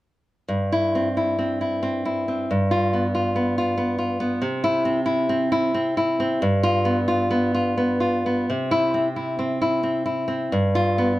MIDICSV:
0, 0, Header, 1, 2, 480
1, 0, Start_track
1, 0, Key_signature, 0, "major"
1, 0, Tempo, 669643
1, 353, Time_signature, 3, 2, 24, 8
1, 1788, Tempo, 641711
1, 3228, Tempo, 665927
1, 5148, Tempo, 700935
1, 6108, Tempo, 680272
1, 8019, End_track
2, 0, Start_track
2, 0, Title_t, "Nylon-string guitar"
2, 0, Program_c, 0, 24
2, 348, Note_on_c, 0, 43, 40
2, 519, Note_on_c, 0, 64, 51
2, 682, Note_on_c, 0, 60, 35
2, 773, Note_off_c, 0, 64, 0
2, 838, Note_on_c, 0, 64, 33
2, 985, Note_off_c, 0, 60, 0
2, 993, Note_on_c, 0, 60, 36
2, 1145, Note_off_c, 0, 64, 0
2, 1153, Note_on_c, 0, 64, 36
2, 1300, Note_off_c, 0, 60, 0
2, 1309, Note_on_c, 0, 60, 36
2, 1464, Note_off_c, 0, 64, 0
2, 1472, Note_on_c, 0, 64, 34
2, 1626, Note_off_c, 0, 60, 0
2, 1635, Note_on_c, 0, 60, 34
2, 1757, Note_off_c, 0, 43, 0
2, 1790, Note_off_c, 0, 64, 0
2, 1792, Note_off_c, 0, 60, 0
2, 1797, Note_on_c, 0, 43, 42
2, 1950, Note_on_c, 0, 65, 55
2, 2117, Note_on_c, 0, 59, 37
2, 2214, Note_off_c, 0, 65, 0
2, 2276, Note_on_c, 0, 65, 38
2, 2423, Note_off_c, 0, 59, 0
2, 2432, Note_on_c, 0, 59, 40
2, 2591, Note_off_c, 0, 65, 0
2, 2599, Note_on_c, 0, 65, 40
2, 2737, Note_off_c, 0, 59, 0
2, 2746, Note_on_c, 0, 59, 38
2, 2894, Note_off_c, 0, 65, 0
2, 2903, Note_on_c, 0, 65, 34
2, 3056, Note_off_c, 0, 59, 0
2, 3065, Note_on_c, 0, 59, 44
2, 3204, Note_off_c, 0, 43, 0
2, 3224, Note_off_c, 0, 65, 0
2, 3225, Note_on_c, 0, 48, 50
2, 3227, Note_off_c, 0, 59, 0
2, 3385, Note_on_c, 0, 64, 61
2, 3538, Note_on_c, 0, 60, 45
2, 3640, Note_off_c, 0, 64, 0
2, 3687, Note_on_c, 0, 64, 47
2, 3849, Note_off_c, 0, 60, 0
2, 3858, Note_on_c, 0, 60, 47
2, 4011, Note_off_c, 0, 64, 0
2, 4020, Note_on_c, 0, 64, 49
2, 4174, Note_off_c, 0, 60, 0
2, 4183, Note_on_c, 0, 60, 49
2, 4338, Note_off_c, 0, 64, 0
2, 4347, Note_on_c, 0, 64, 45
2, 4502, Note_off_c, 0, 60, 0
2, 4510, Note_on_c, 0, 60, 45
2, 4640, Note_off_c, 0, 48, 0
2, 4669, Note_off_c, 0, 64, 0
2, 4669, Note_on_c, 0, 43, 56
2, 4670, Note_off_c, 0, 60, 0
2, 4824, Note_on_c, 0, 65, 69
2, 4980, Note_on_c, 0, 59, 50
2, 5082, Note_off_c, 0, 65, 0
2, 5145, Note_on_c, 0, 65, 47
2, 5292, Note_off_c, 0, 59, 0
2, 5300, Note_on_c, 0, 59, 50
2, 5456, Note_off_c, 0, 65, 0
2, 5464, Note_on_c, 0, 65, 48
2, 5613, Note_off_c, 0, 59, 0
2, 5622, Note_on_c, 0, 59, 41
2, 5770, Note_off_c, 0, 65, 0
2, 5778, Note_on_c, 0, 65, 38
2, 5945, Note_off_c, 0, 59, 0
2, 5954, Note_on_c, 0, 59, 39
2, 6081, Note_off_c, 0, 43, 0
2, 6107, Note_off_c, 0, 65, 0
2, 6111, Note_off_c, 0, 59, 0
2, 6116, Note_on_c, 0, 48, 49
2, 6269, Note_on_c, 0, 64, 61
2, 6429, Note_on_c, 0, 60, 40
2, 6524, Note_off_c, 0, 64, 0
2, 6586, Note_on_c, 0, 64, 36
2, 6736, Note_off_c, 0, 60, 0
2, 6745, Note_on_c, 0, 60, 43
2, 6897, Note_off_c, 0, 64, 0
2, 6906, Note_on_c, 0, 64, 42
2, 7051, Note_off_c, 0, 60, 0
2, 7059, Note_on_c, 0, 60, 43
2, 7208, Note_off_c, 0, 64, 0
2, 7216, Note_on_c, 0, 64, 42
2, 7364, Note_off_c, 0, 60, 0
2, 7372, Note_on_c, 0, 60, 38
2, 7516, Note_off_c, 0, 48, 0
2, 7538, Note_off_c, 0, 60, 0
2, 7540, Note_off_c, 0, 64, 0
2, 7546, Note_on_c, 0, 43, 51
2, 7707, Note_on_c, 0, 65, 61
2, 7870, Note_on_c, 0, 59, 45
2, 7966, Note_off_c, 0, 65, 0
2, 8019, Note_off_c, 0, 43, 0
2, 8019, Note_off_c, 0, 59, 0
2, 8019, End_track
0, 0, End_of_file